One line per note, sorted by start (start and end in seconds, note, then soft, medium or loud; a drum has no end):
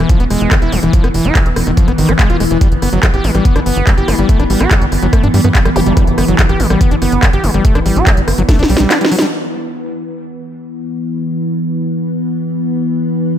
0.00 9.31 E3 medium
0.00 9.31 B3 medium
0.09 0.19 F3 medium
0.09 kick loud
0.09 closed hi-hat medium
0.20 0.26 E1 medium
0.20 0.24 B3 loud
0.20 closed hi-hat soft
0.30 0.37 E1 loud
0.30 0.53 G#3 medium
0.30 cross-stick soft
0.30 open hi-hat loud
0.41 0.47 E1 medium
0.41 closed hi-hat soft
0.51 0.59 D#3 medium
0.51 kick loud
0.51 cross-stick medium
0.51 clap loud
0.51 closed hi-hat medium
0.62 0.68 E1 medium
0.62 0.74 E4 medium
0.62 closed hi-hat soft
0.72 0.79 E1 loud
0.72 0.80 E3 loud
0.72 open hi-hat loud
0.83 0.89 E1 medium
0.83 0.93 E3 medium
0.83 cross-stick soft
0.83 closed hi-hat soft
0.93 1.03 F3 medium
0.93 kick loud
0.93 closed hi-hat medium
1.04 1.10 F1 medium
1.04 1.08 B3 loud
1.04 cross-stick medium
1.04 closed hi-hat soft
1.14 1.21 F1 loud
1.14 1.26 E3 medium
1.14 open hi-hat loud
1.25 1.31 F1 loud
1.25 1.37 E4 medium
1.25 closed hi-hat soft
1.35 1.47 D#3 medium
1.35 kick loud
1.35 cross-stick soft
1.35 clap loud
1.35 closed hi-hat medium
1.46 1.52 E1 medium
1.46 1.50 E3 medium
1.46 closed hi-hat soft
1.56 1.63 E1 loud
1.56 cross-stick medium
1.56 open hi-hat loud
1.67 1.73 E1 medium
1.67 1.71 D#3 medium
1.67 closed hi-hat soft
1.77 1.87 F3 medium
1.77 kick loud
1.77 closed hi-hat medium
1.88 1.94 G#1 medium
1.88 1.92 B3 loud
1.88 cross-stick soft
1.88 closed hi-hat soft
1.98 2.05 G#1 loud
1.98 2.10 D#3 loud
1.98 open hi-hat loud
2.09 2.15 G#1 medium
2.09 2.13 E4 medium
2.09 cross-stick medium
2.09 closed hi-hat soft
2.19 2.29 G#3 loud
2.19 kick loud
2.19 clap loud
2.19 closed hi-hat medium
2.30 2.36 E1 medium
2.30 2.37 F4 loud
2.30 closed hi-hat soft
2.40 2.46 E1 loud
2.40 2.45 G#3 medium
2.40 cross-stick soft
2.40 open hi-hat loud
2.51 2.57 E1 medium
2.51 2.58 E3 medium
2.51 closed hi-hat soft
2.61 2.68 G3 medium
2.61 kick loud
2.61 closed hi-hat medium
2.72 2.78 G1 medium
2.72 closed hi-hat soft
2.82 2.88 G1 loud
2.82 2.89 B3 medium
2.82 cross-stick soft
2.82 open hi-hat loud
2.93 2.99 G1 loud
2.93 3.00 F#3 medium
2.93 closed hi-hat soft
3.03 kick loud
3.03 cross-stick medium
3.03 clap loud
3.03 closed hi-hat medium
3.14 3.20 A1 medium
3.14 3.26 G4 medium
3.14 closed hi-hat soft
3.24 3.30 A1 loud
3.24 3.31 G3 loud
3.24 open hi-hat loud
3.35 3.41 A1 medium
3.35 3.45 G3 medium
3.35 cross-stick soft
3.35 closed hi-hat soft
3.45 3.55 B3 medium
3.45 kick loud
3.45 closed hi-hat medium
3.56 3.62 G1 medium
3.56 3.60 D4 loud
3.56 cross-stick medium
3.56 closed hi-hat soft
3.66 3.72 G1 loud
3.66 3.89 B3 medium
3.66 open hi-hat loud
3.77 3.83 G1 medium
3.77 closed hi-hat soft
3.87 3.94 F#3 medium
3.87 kick loud
3.87 cross-stick soft
3.87 clap loud
3.87 closed hi-hat medium
3.98 4.04 G1 medium
3.98 4.10 G4 medium
3.98 closed hi-hat soft
4.08 4.14 G1 medium
4.08 4.15 G3 loud
4.08 cross-stick medium
4.08 open hi-hat loud
4.19 4.25 G1 medium
4.19 4.29 G3 medium
4.19 closed hi-hat soft
4.29 4.39 A3 medium
4.29 kick loud
4.29 closed hi-hat loud
4.40 4.46 A1 medium
4.40 4.44 D4 loud
4.40 cross-stick soft
4.40 closed hi-hat soft
4.50 4.56 A1 loud
4.50 4.62 G3 medium
4.50 open hi-hat loud
4.61 4.67 A1 medium
4.61 4.73 G4 medium
4.61 cross-stick medium
4.61 closed hi-hat soft
4.71 4.83 F#3 medium
4.71 kick loud
4.71 clap loud
4.71 closed hi-hat loud
4.81 4.88 G1 medium
4.81 4.86 G3 medium
4.81 closed hi-hat soft
4.92 4.98 G1 loud
4.92 cross-stick soft
4.92 open hi-hat loud
5.02 5.09 G1 medium
5.02 5.07 F#3 medium
5.02 closed hi-hat soft
5.13 5.23 A3 medium
5.13 kick loud
5.13 cross-stick medium
5.13 closed hi-hat medium
5.23 5.30 G2 medium
5.23 5.28 D4 loud
5.23 closed hi-hat soft
5.34 5.40 G2 loud
5.34 5.41 G3 medium
5.34 open hi-hat loud
5.44 5.51 G2 medium
5.44 5.49 B3 medium
5.44 cross-stick soft
5.44 closed hi-hat soft
5.55 5.62 G3 medium
5.55 kick loud
5.55 clap loud
5.55 closed hi-hat medium
5.65 5.72 G1 medium
5.65 5.70 G3 medium
5.65 cross-stick medium
5.65 closed hi-hat soft
5.76 5.82 G1 medium
5.76 5.80 G4 loud
5.76 open hi-hat loud
5.76 zap medium
5.86 5.93 G1 medium
5.86 5.94 G3 medium
5.86 closed hi-hat soft
5.97 6.04 G3 medium
5.97 kick loud
5.97 cross-stick soft
5.97 closed hi-hat loud
6.07 6.14 G1 medium
6.07 closed hi-hat soft
6.18 6.24 G1 loud
6.18 6.25 B3 medium
6.18 cross-stick medium
6.18 open hi-hat loud
6.28 6.35 G1 medium
6.28 6.36 F#3 medium
6.28 closed hi-hat soft
6.39 6.46 F#3 medium
6.39 kick loud
6.39 clap loud
6.39 closed hi-hat loud
6.49 6.56 A1 medium
6.49 6.61 G4 medium
6.49 cross-stick soft
6.49 closed hi-hat soft
6.60 6.66 A1 loud
6.60 6.67 G3 loud
6.60 open hi-hat loud
6.70 6.77 A1 loud
6.70 6.80 G3 medium
6.70 cross-stick medium
6.70 closed hi-hat soft
6.81 6.91 B3 medium
6.81 kick loud
6.81 closed hi-hat loud
6.91 6.98 G1 medium
6.91 6.96 D4 loud
6.91 closed hi-hat soft
7.02 7.08 G1 loud
7.02 7.24 B3 medium
7.02 cross-stick soft
7.02 open hi-hat loud
7.12 7.19 G1 medium
7.12 closed hi-hat soft
7.23 7.30 F#3 medium
7.23 kick loud
7.23 cross-stick medium
7.23 clap loud
7.23 closed hi-hat medium
7.33 7.39 G1 medium
7.33 7.45 G4 medium
7.33 closed hi-hat soft
7.44 7.50 G1 loud
7.44 7.51 G3 loud
7.44 open hi-hat loud
7.54 7.60 G1 medium
7.54 7.64 G3 medium
7.54 cross-stick soft
7.54 closed hi-hat soft
7.65 7.75 A3 medium
7.65 kick loud
7.65 closed hi-hat loud
7.75 7.81 A1 medium
7.75 7.80 D4 loud
7.75 cross-stick medium
7.75 closed hi-hat soft
7.86 7.92 A1 loud
7.86 7.98 G3 medium
7.86 open hi-hat loud
7.96 8.02 A1 loud
7.96 8.08 G4 medium
7.96 closed hi-hat soft
8.07 8.19 F#3 medium
8.07 kick loud
8.07 cross-stick soft
8.07 clap loud
8.07 closed hi-hat loud
8.17 8.23 G1 medium
8.17 8.22 G3 medium
8.17 closed hi-hat soft
8.28 8.34 G1 loud
8.28 cross-stick medium
8.28 open hi-hat loud
8.38 8.44 G1 medium
8.38 8.42 F#3 medium
8.38 closed hi-hat soft
8.49 8.59 A3 medium
8.49 kick loud
8.49 snare medium
8.49 closed hi-hat loud
8.59 8.65 B1 medium
8.59 8.63 D4 loud
8.59 snare medium
8.59 closed hi-hat soft
8.70 8.76 B1 loud
8.70 8.77 G3 medium
8.70 open hi-hat loud
8.77 8.86 B1 medium
8.77 8.90 G3 loud
8.77 snare medium
8.77 closed hi-hat soft
8.91 8.98 D4 medium
8.91 snare medium
8.91 clap loud
8.91 closed hi-hat loud
9.01 9.05 G3 medium
9.01 snare loud
9.01 closed hi-hat soft
9.12 9.16 F#3 loud
9.12 open hi-hat loud
9.19 9.26 G3 medium
9.19 snare loud
9.19 closed hi-hat soft
9.33 13.38 E3 medium
9.33 13.38 B3 medium